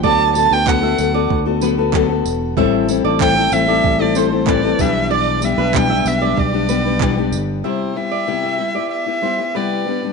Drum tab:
TB |-x-x-x-x|-x-x-x-x|-x-x-x-x|--------|
CP |--x---x-|--x---x-|--x---x-|--------|
BD |o-o-o-o-|o-o-o-oo|--o-o-o-|--------|